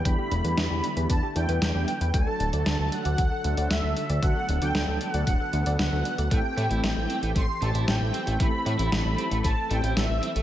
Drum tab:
HH |x-xxx-xxx-xxx-xx|x-xxx-xxx-xxx-xx|x-xxx-xxx-xxx-xx|x-xxx-xxx-xxx-xx|
SD |----o-------o---|----o-------o---|----o-------o---|----o-------o---|
BD |o-------o-------|o-------o-------|o-------o-------|o-------o-------|

HH |x-xxx-xxx-xxx-xx|
SD |----o-------o---|
BD |o-------o-------|